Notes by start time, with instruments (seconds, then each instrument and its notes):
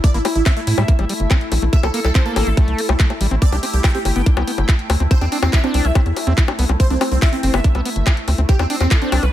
Already playing: ambient pad A3 E4
0.04 acid bass A3, supersaw synth D5, kick, closed hi-hat
0.14 analog synth bass A1, acid bass A#3, supersaw synth E4, closed hi-hat
0.25 acid bass A3, supersaw synth E4, open hi-hat, high bongo
0.35 analog synth bass A1, supersaw synth E4, closed hi-hat
0.46 acid bass C4, supersaw synth E5, kick, clap, closed hi-hat, high bongo
0.57 acid bass A3, supersaw synth E4, closed hi-hat
0.67 analog synth bass A2, supersaw synth E4, open hi-hat
0.78 analog synth bass A2, acid bass G3, supersaw synth E5, high bongo
0.88 acid bass A#3, kick, closed hi-hat
0.99 analog synth bass A1, acid bass G3, closed hi-hat, high bongo
1.09 acid bass G3, open hi-hat
1.20 analog synth bass G1, closed hi-hat
1.31 acid bass C4, kick, clap, closed hi-hat, high bongo
1.41 closed hi-hat
1.52 analog synth bass A#1, acid bass A3, open hi-hat, high bongo
1.62 analog synth bass A#1, acid bass A3, closed hi-hat
1.73 acid bass A3, supersaw synth E5, kick, closed hi-hat
1.83 analog synth bass C2, acid bass A#3, supersaw synth A4, closed hi-hat, high bongo
1.94 acid bass A#3, supersaw synth A4, open hi-hat
2.05 analog synth bass C2, supersaw synth A4, clap, closed hi-hat, high bongo
2.15 acid bass C4, supersaw synth C5, kick, clap, closed hi-hat
2.26 acid bass A#3, supersaw synth A4, closed hi-hat
2.36 analog synth bass A1, supersaw synth A4, open hi-hat, high bongo
2.47 analog synth bass A1, acid bass A3, supersaw synth A4, closed hi-hat
2.57 acid bass A3, kick, closed hi-hat, high bongo
2.68 analog synth bass C2, closed hi-hat
2.78 acid bass A#3, open hi-hat
2.89 analog synth bass C2, acid bass A3, closed hi-hat, high bongo
3.00 acid bass A3, kick, clap, closed hi-hat
3.10 acid bass A3, closed hi-hat, high bongo
3.21 analog synth bass A1, acid bass G3, open hi-hat
3.31 analog synth bass A1, acid bass C4, closed hi-hat
3.42 acid bass C4, supersaw synth D5, kick, closed hi-hat
3.52 analog synth bass C2, acid bass D4, supersaw synth G4, closed hi-hat, high bongo
3.63 acid bass C4, supersaw synth G4, open hi-hat
3.73 analog synth bass C2, supersaw synth G4, closed hi-hat
3.84 acid bass E4, supersaw synth G5, kick, clap, closed hi-hat, high bongo
3.95 acid bass C4, supersaw synth G4, closed hi-hat
4.05 analog synth bass G1, supersaw synth G4, open hi-hat, high bongo
4.16 analog synth bass G1, acid bass B3, supersaw synth G5
4.26 acid bass D4, kick, closed hi-hat
4.37 analog synth bass C2, acid bass B3, closed hi-hat, high bongo
4.47 acid bass B3, open hi-hat
4.58 analog synth bass G1, closed hi-hat, high bongo
4.69 acid bass E4, kick, clap, closed hi-hat
4.79 closed hi-hat
4.90 analog synth bass D2, acid bass C4, open hi-hat, high bongo
5.00 analog synth bass D2, acid bass C4, closed hi-hat
5.11 acid bass C4, supersaw synth C5, kick, closed hi-hat, high bongo
5.21 analog synth bass E2, supersaw synth C4, acid bass D4, closed hi-hat
5.32 supersaw synth C4, acid bass D4, open hi-hat
5.43 analog synth bass E2, supersaw synth C4, clap, closed hi-hat, high bongo
5.53 acid bass E4, supersaw synth E5, kick, clap, closed hi-hat
5.64 supersaw synth C4, acid bass D4, closed hi-hat, high bongo
5.74 analog synth bass C2, supersaw synth C4, open hi-hat
5.85 analog synth bass C2, acid bass C4, supersaw synth E5, closed hi-hat
5.95 acid bass C4, kick, closed hi-hat, high bongo
6.06 analog synth bass E2, closed hi-hat
6.16 open hi-hat, high bongo
6.27 analog synth bass E2, acid bass C4, closed hi-hat
6.38 acid bass E4, kick, clap, closed hi-hat
6.48 acid bass D4, closed hi-hat, high bongo
6.59 analog synth bass C2, acid bass B3, open hi-hat
6.69 analog synth bass C2, acid bass C4, high bongo
6.80 acid bass C4, supersaw synth C5, kick, closed hi-hat
6.90 analog synth bass C2, supersaw synth C4, acid bass D4, closed hi-hat
7.01 acid bass C4, supersaw synth C4, open hi-hat, high bongo
7.12 analog synth bass C2, supersaw synth C4, closed hi-hat
7.22 acid bass E4, supersaw synth E5, kick, clap, closed hi-hat, high bongo
7.33 acid bass C4, supersaw synth C4, closed hi-hat
7.43 analog synth bass G1, supersaw synth C4, open hi-hat
7.54 analog synth bass G1, acid bass B3, supersaw synth E5, closed hi-hat, high bongo
7.64 acid bass D4, kick, closed hi-hat
7.75 analog synth bass C2, acid bass B3, closed hi-hat, high bongo
7.85 acid bass B3, open hi-hat
7.96 analog synth bass G1, closed hi-hat
8.07 acid bass E4, kick, clap, closed hi-hat, high bongo
8.17 closed hi-hat
8.28 analog synth bass D2, acid bass C4, open hi-hat, high bongo
8.38 analog synth bass D2, acid bass C4, closed hi-hat
8.49 acid bass C4, supersaw synth G4, kick, closed hi-hat
8.59 analog synth bass E2, supersaw synth C4, acid bass D4, closed hi-hat, high bongo
8.70 supersaw synth C4, acid bass D4, open hi-hat
8.81 analog synth bass E2, supersaw synth C4, clap, closed hi-hat, high bongo
8.91 acid bass E4, supersaw synth A4, kick, clap, closed hi-hat
9.02 supersaw synth C4, acid bass D4, closed hi-hat
9.12 analog synth bass C2, supersaw synth C4, open hi-hat, high bongo
9.23 analog synth bass C2, acid bass C4, supersaw synth B4, closed hi-hat